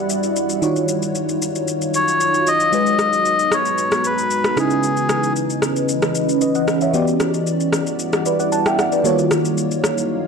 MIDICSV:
0, 0, Header, 1, 5, 480
1, 0, Start_track
1, 0, Tempo, 526316
1, 570, Time_signature, 4, 2, 24, 8
1, 9369, End_track
2, 0, Start_track
2, 0, Title_t, "Melodica"
2, 0, Program_c, 0, 22
2, 1780, Note_on_c, 0, 73, 104
2, 2260, Note_on_c, 0, 75, 117
2, 2269, Note_off_c, 0, 73, 0
2, 3222, Note_on_c, 0, 73, 98
2, 3244, Note_off_c, 0, 75, 0
2, 3703, Note_on_c, 0, 71, 97
2, 3710, Note_off_c, 0, 73, 0
2, 4185, Note_on_c, 0, 68, 83
2, 4191, Note_off_c, 0, 71, 0
2, 4861, Note_off_c, 0, 68, 0
2, 9369, End_track
3, 0, Start_track
3, 0, Title_t, "FM electric piano"
3, 0, Program_c, 1, 5
3, 0, Control_c, 1, 64, 127
3, 0, Note_on_c, 1, 52, 71
3, 0, Note_on_c, 1, 64, 66
3, 0, Note_on_c, 1, 66, 67
3, 0, Note_on_c, 1, 67, 66
3, 0, Note_on_c, 1, 74, 80
3, 529, Note_off_c, 1, 52, 0
3, 531, Note_off_c, 1, 64, 0
3, 534, Note_off_c, 1, 66, 0
3, 536, Note_off_c, 1, 67, 0
3, 539, Note_off_c, 1, 74, 0
3, 562, Note_on_c, 1, 51, 72
3, 567, Note_on_c, 1, 63, 65
3, 571, Note_on_c, 1, 65, 64
3, 575, Note_on_c, 1, 66, 66
3, 580, Note_on_c, 1, 73, 80
3, 583, Control_c, 1, 64, 0
3, 755, Control_c, 1, 64, 127
3, 2450, Note_off_c, 1, 51, 0
3, 2452, Note_off_c, 1, 63, 0
3, 2454, Note_off_c, 1, 65, 0
3, 2456, Note_off_c, 1, 66, 0
3, 2459, Note_off_c, 1, 73, 0
3, 2481, Note_on_c, 1, 56, 58
3, 2487, Note_on_c, 1, 63, 55
3, 2490, Note_on_c, 1, 66, 53
3, 2496, Note_on_c, 1, 68, 58
3, 2501, Control_c, 1, 64, 0
3, 2501, Note_on_c, 1, 71, 66
3, 2678, Control_c, 1, 64, 127
3, 4132, Note_off_c, 1, 56, 0
3, 4135, Note_off_c, 1, 63, 0
3, 4137, Note_off_c, 1, 66, 0
3, 4139, Note_off_c, 1, 68, 0
3, 4142, Note_off_c, 1, 71, 0
3, 4163, Note_on_c, 1, 49, 62
3, 4168, Note_on_c, 1, 61, 58
3, 4172, Note_on_c, 1, 63, 57
3, 4177, Note_on_c, 1, 64, 57
3, 4182, Control_c, 1, 64, 0
3, 4182, Note_on_c, 1, 71, 69
3, 4331, Control_c, 1, 64, 127
3, 5823, Note_off_c, 1, 71, 0
3, 5851, Note_on_c, 1, 75, 67
3, 5856, Note_on_c, 1, 71, 55
3, 5969, Note_off_c, 1, 75, 0
3, 5972, Note_off_c, 1, 71, 0
3, 5977, Note_on_c, 1, 78, 70
3, 5982, Note_on_c, 1, 75, 62
3, 6050, Note_off_c, 1, 49, 0
3, 6052, Note_off_c, 1, 61, 0
3, 6055, Note_off_c, 1, 63, 0
3, 6057, Note_off_c, 1, 64, 0
3, 6204, Note_off_c, 1, 78, 0
3, 6207, Note_off_c, 1, 75, 0
3, 6219, Note_on_c, 1, 76, 68
3, 6225, Note_on_c, 1, 73, 58
3, 6324, Note_on_c, 1, 52, 73
3, 6328, Note_on_c, 1, 59, 67
3, 6333, Note_on_c, 1, 66, 64
3, 6337, Note_on_c, 1, 67, 70
3, 6341, Note_on_c, 1, 74, 84
3, 6342, Control_c, 1, 64, 0
3, 6445, Note_off_c, 1, 76, 0
3, 6448, Note_off_c, 1, 73, 0
3, 6519, Control_c, 1, 64, 127
3, 7512, Note_off_c, 1, 74, 0
3, 7533, Note_on_c, 1, 74, 63
3, 7539, Note_on_c, 1, 71, 55
3, 7650, Note_off_c, 1, 74, 0
3, 7653, Note_off_c, 1, 71, 0
3, 7657, Note_on_c, 1, 78, 68
3, 7663, Note_on_c, 1, 74, 59
3, 7765, Note_off_c, 1, 78, 0
3, 7769, Note_off_c, 1, 74, 0
3, 7771, Note_on_c, 1, 81, 72
3, 7777, Note_on_c, 1, 78, 60
3, 7889, Note_off_c, 1, 81, 0
3, 7892, Note_off_c, 1, 78, 0
3, 7898, Note_on_c, 1, 79, 72
3, 7903, Note_on_c, 1, 76, 59
3, 8006, Note_off_c, 1, 79, 0
3, 8009, Note_off_c, 1, 76, 0
3, 8012, Note_on_c, 1, 78, 65
3, 8017, Note_on_c, 1, 74, 56
3, 8127, Note_off_c, 1, 74, 0
3, 8130, Note_off_c, 1, 78, 0
3, 8138, Note_on_c, 1, 74, 63
3, 8143, Note_on_c, 1, 71, 54
3, 8211, Note_off_c, 1, 52, 0
3, 8213, Note_off_c, 1, 59, 0
3, 8215, Note_off_c, 1, 66, 0
3, 8217, Note_off_c, 1, 67, 0
3, 8243, Note_on_c, 1, 51, 72
3, 8247, Note_on_c, 1, 58, 66
3, 8253, Note_on_c, 1, 65, 67
3, 8257, Note_on_c, 1, 66, 69
3, 8262, Note_on_c, 1, 73, 82
3, 8263, Control_c, 1, 64, 0
3, 8364, Note_off_c, 1, 74, 0
3, 8367, Note_off_c, 1, 71, 0
3, 8395, Control_c, 1, 64, 127
3, 9369, Note_off_c, 1, 51, 0
3, 9369, Note_off_c, 1, 58, 0
3, 9369, Note_off_c, 1, 65, 0
3, 9369, Note_off_c, 1, 66, 0
3, 9369, Note_off_c, 1, 73, 0
3, 9369, End_track
4, 0, Start_track
4, 0, Title_t, "Ambient pad"
4, 0, Program_c, 2, 92
4, 0, Note_on_c, 2, 55, 81
4, 0, Note_on_c, 2, 64, 74
4, 0, Note_on_c, 2, 74, 87
4, 0, Note_on_c, 2, 78, 73
4, 552, Note_off_c, 2, 64, 0
4, 552, Note_off_c, 2, 74, 0
4, 552, Note_off_c, 2, 78, 0
4, 554, Note_off_c, 2, 55, 0
4, 567, Note_on_c, 2, 54, 78
4, 567, Note_on_c, 2, 63, 69
4, 567, Note_on_c, 2, 77, 73
4, 569, Note_on_c, 2, 73, 89
4, 2469, Note_off_c, 2, 54, 0
4, 2469, Note_off_c, 2, 63, 0
4, 2469, Note_off_c, 2, 77, 0
4, 2471, Note_off_c, 2, 73, 0
4, 2489, Note_on_c, 2, 56, 76
4, 2489, Note_on_c, 2, 66, 71
4, 2492, Note_on_c, 2, 59, 73
4, 2492, Note_on_c, 2, 82, 90
4, 4153, Note_off_c, 2, 56, 0
4, 4153, Note_off_c, 2, 66, 0
4, 4155, Note_off_c, 2, 59, 0
4, 4155, Note_off_c, 2, 82, 0
4, 4161, Note_on_c, 2, 75, 72
4, 4163, Note_on_c, 2, 52, 79
4, 4164, Note_on_c, 2, 61, 72
4, 4164, Note_on_c, 2, 71, 87
4, 6304, Note_off_c, 2, 75, 0
4, 6305, Note_off_c, 2, 52, 0
4, 6305, Note_off_c, 2, 61, 0
4, 6305, Note_off_c, 2, 71, 0
4, 6325, Note_on_c, 2, 64, 76
4, 6326, Note_on_c, 2, 74, 89
4, 6327, Note_on_c, 2, 55, 78
4, 6327, Note_on_c, 2, 78, 74
4, 8228, Note_off_c, 2, 64, 0
4, 8229, Note_off_c, 2, 55, 0
4, 8229, Note_off_c, 2, 74, 0
4, 8229, Note_off_c, 2, 78, 0
4, 8251, Note_on_c, 2, 73, 85
4, 8252, Note_on_c, 2, 77, 72
4, 8253, Note_on_c, 2, 54, 79
4, 8254, Note_on_c, 2, 63, 73
4, 9369, Note_off_c, 2, 54, 0
4, 9369, Note_off_c, 2, 63, 0
4, 9369, Note_off_c, 2, 73, 0
4, 9369, Note_off_c, 2, 77, 0
4, 9369, End_track
5, 0, Start_track
5, 0, Title_t, "Drums"
5, 87, Note_on_c, 9, 82, 79
5, 178, Note_off_c, 9, 82, 0
5, 213, Note_on_c, 9, 82, 47
5, 304, Note_off_c, 9, 82, 0
5, 330, Note_on_c, 9, 82, 76
5, 421, Note_off_c, 9, 82, 0
5, 450, Note_on_c, 9, 82, 50
5, 542, Note_off_c, 9, 82, 0
5, 569, Note_on_c, 9, 82, 74
5, 661, Note_off_c, 9, 82, 0
5, 693, Note_on_c, 9, 82, 47
5, 784, Note_off_c, 9, 82, 0
5, 806, Note_on_c, 9, 82, 89
5, 897, Note_off_c, 9, 82, 0
5, 935, Note_on_c, 9, 82, 59
5, 1026, Note_off_c, 9, 82, 0
5, 1050, Note_on_c, 9, 82, 63
5, 1141, Note_off_c, 9, 82, 0
5, 1176, Note_on_c, 9, 82, 51
5, 1267, Note_off_c, 9, 82, 0
5, 1295, Note_on_c, 9, 82, 88
5, 1386, Note_off_c, 9, 82, 0
5, 1417, Note_on_c, 9, 82, 52
5, 1509, Note_off_c, 9, 82, 0
5, 1530, Note_on_c, 9, 82, 78
5, 1621, Note_off_c, 9, 82, 0
5, 1655, Note_on_c, 9, 82, 53
5, 1746, Note_off_c, 9, 82, 0
5, 1769, Note_on_c, 9, 82, 86
5, 1860, Note_off_c, 9, 82, 0
5, 1897, Note_on_c, 9, 82, 47
5, 1988, Note_off_c, 9, 82, 0
5, 2011, Note_on_c, 9, 82, 79
5, 2102, Note_off_c, 9, 82, 0
5, 2135, Note_on_c, 9, 82, 47
5, 2226, Note_off_c, 9, 82, 0
5, 2251, Note_on_c, 9, 82, 74
5, 2342, Note_off_c, 9, 82, 0
5, 2372, Note_on_c, 9, 82, 50
5, 2463, Note_off_c, 9, 82, 0
5, 2488, Note_on_c, 9, 82, 73
5, 2580, Note_off_c, 9, 82, 0
5, 2612, Note_on_c, 9, 82, 48
5, 2704, Note_off_c, 9, 82, 0
5, 2725, Note_on_c, 9, 37, 90
5, 2726, Note_on_c, 9, 82, 98
5, 2816, Note_off_c, 9, 37, 0
5, 2817, Note_off_c, 9, 82, 0
5, 2853, Note_on_c, 9, 82, 56
5, 2945, Note_off_c, 9, 82, 0
5, 2969, Note_on_c, 9, 82, 66
5, 3060, Note_off_c, 9, 82, 0
5, 3094, Note_on_c, 9, 82, 52
5, 3185, Note_off_c, 9, 82, 0
5, 3207, Note_on_c, 9, 37, 90
5, 3211, Note_on_c, 9, 82, 90
5, 3298, Note_off_c, 9, 37, 0
5, 3302, Note_off_c, 9, 82, 0
5, 3333, Note_on_c, 9, 82, 51
5, 3424, Note_off_c, 9, 82, 0
5, 3447, Note_on_c, 9, 82, 76
5, 3538, Note_off_c, 9, 82, 0
5, 3572, Note_on_c, 9, 82, 52
5, 3574, Note_on_c, 9, 37, 87
5, 3664, Note_off_c, 9, 82, 0
5, 3665, Note_off_c, 9, 37, 0
5, 3687, Note_on_c, 9, 82, 86
5, 3779, Note_off_c, 9, 82, 0
5, 3814, Note_on_c, 9, 82, 47
5, 3905, Note_off_c, 9, 82, 0
5, 3928, Note_on_c, 9, 82, 79
5, 4019, Note_off_c, 9, 82, 0
5, 4053, Note_on_c, 9, 37, 86
5, 4054, Note_on_c, 9, 82, 46
5, 4144, Note_off_c, 9, 37, 0
5, 4145, Note_off_c, 9, 82, 0
5, 4170, Note_on_c, 9, 37, 89
5, 4170, Note_on_c, 9, 82, 76
5, 4261, Note_off_c, 9, 37, 0
5, 4262, Note_off_c, 9, 82, 0
5, 4290, Note_on_c, 9, 82, 54
5, 4382, Note_off_c, 9, 82, 0
5, 4407, Note_on_c, 9, 82, 76
5, 4498, Note_off_c, 9, 82, 0
5, 4530, Note_on_c, 9, 82, 47
5, 4621, Note_off_c, 9, 82, 0
5, 4644, Note_on_c, 9, 37, 89
5, 4645, Note_on_c, 9, 82, 94
5, 4736, Note_off_c, 9, 37, 0
5, 4736, Note_off_c, 9, 82, 0
5, 4773, Note_on_c, 9, 82, 57
5, 4864, Note_off_c, 9, 82, 0
5, 4889, Note_on_c, 9, 82, 66
5, 4980, Note_off_c, 9, 82, 0
5, 5015, Note_on_c, 9, 82, 51
5, 5106, Note_off_c, 9, 82, 0
5, 5126, Note_on_c, 9, 37, 90
5, 5131, Note_on_c, 9, 82, 90
5, 5217, Note_off_c, 9, 37, 0
5, 5222, Note_off_c, 9, 82, 0
5, 5254, Note_on_c, 9, 82, 51
5, 5346, Note_off_c, 9, 82, 0
5, 5368, Note_on_c, 9, 82, 80
5, 5460, Note_off_c, 9, 82, 0
5, 5492, Note_on_c, 9, 82, 55
5, 5494, Note_on_c, 9, 37, 86
5, 5584, Note_off_c, 9, 82, 0
5, 5585, Note_off_c, 9, 37, 0
5, 5607, Note_on_c, 9, 82, 87
5, 5698, Note_off_c, 9, 82, 0
5, 5735, Note_on_c, 9, 82, 48
5, 5827, Note_off_c, 9, 82, 0
5, 5848, Note_on_c, 9, 82, 80
5, 5939, Note_off_c, 9, 82, 0
5, 5973, Note_on_c, 9, 82, 47
5, 6064, Note_off_c, 9, 82, 0
5, 6090, Note_on_c, 9, 37, 86
5, 6091, Note_on_c, 9, 82, 75
5, 6181, Note_off_c, 9, 37, 0
5, 6182, Note_off_c, 9, 82, 0
5, 6211, Note_on_c, 9, 82, 49
5, 6303, Note_off_c, 9, 82, 0
5, 6328, Note_on_c, 9, 82, 79
5, 6419, Note_off_c, 9, 82, 0
5, 6453, Note_on_c, 9, 82, 47
5, 6544, Note_off_c, 9, 82, 0
5, 6566, Note_on_c, 9, 37, 88
5, 6567, Note_on_c, 9, 82, 94
5, 6658, Note_off_c, 9, 37, 0
5, 6659, Note_off_c, 9, 82, 0
5, 6694, Note_on_c, 9, 82, 56
5, 6785, Note_off_c, 9, 82, 0
5, 6810, Note_on_c, 9, 82, 68
5, 6901, Note_off_c, 9, 82, 0
5, 6934, Note_on_c, 9, 82, 51
5, 7025, Note_off_c, 9, 82, 0
5, 7046, Note_on_c, 9, 37, 86
5, 7050, Note_on_c, 9, 82, 96
5, 7137, Note_off_c, 9, 37, 0
5, 7142, Note_off_c, 9, 82, 0
5, 7174, Note_on_c, 9, 82, 50
5, 7265, Note_off_c, 9, 82, 0
5, 7289, Note_on_c, 9, 82, 76
5, 7380, Note_off_c, 9, 82, 0
5, 7414, Note_on_c, 9, 82, 55
5, 7416, Note_on_c, 9, 37, 85
5, 7506, Note_off_c, 9, 82, 0
5, 7507, Note_off_c, 9, 37, 0
5, 7530, Note_on_c, 9, 82, 86
5, 7621, Note_off_c, 9, 82, 0
5, 7657, Note_on_c, 9, 82, 47
5, 7748, Note_off_c, 9, 82, 0
5, 7772, Note_on_c, 9, 82, 77
5, 7863, Note_off_c, 9, 82, 0
5, 7897, Note_on_c, 9, 37, 88
5, 7898, Note_on_c, 9, 82, 47
5, 7988, Note_off_c, 9, 37, 0
5, 7989, Note_off_c, 9, 82, 0
5, 8015, Note_on_c, 9, 37, 85
5, 8015, Note_on_c, 9, 82, 79
5, 8106, Note_off_c, 9, 37, 0
5, 8107, Note_off_c, 9, 82, 0
5, 8136, Note_on_c, 9, 82, 52
5, 8227, Note_off_c, 9, 82, 0
5, 8252, Note_on_c, 9, 82, 75
5, 8344, Note_off_c, 9, 82, 0
5, 8377, Note_on_c, 9, 82, 48
5, 8468, Note_off_c, 9, 82, 0
5, 8490, Note_on_c, 9, 37, 89
5, 8491, Note_on_c, 9, 82, 96
5, 8581, Note_off_c, 9, 37, 0
5, 8582, Note_off_c, 9, 82, 0
5, 8618, Note_on_c, 9, 82, 59
5, 8709, Note_off_c, 9, 82, 0
5, 8733, Note_on_c, 9, 82, 66
5, 8824, Note_off_c, 9, 82, 0
5, 8859, Note_on_c, 9, 82, 49
5, 8950, Note_off_c, 9, 82, 0
5, 8971, Note_on_c, 9, 37, 89
5, 8976, Note_on_c, 9, 82, 93
5, 9063, Note_off_c, 9, 37, 0
5, 9067, Note_off_c, 9, 82, 0
5, 9100, Note_on_c, 9, 82, 51
5, 9191, Note_off_c, 9, 82, 0
5, 9369, End_track
0, 0, End_of_file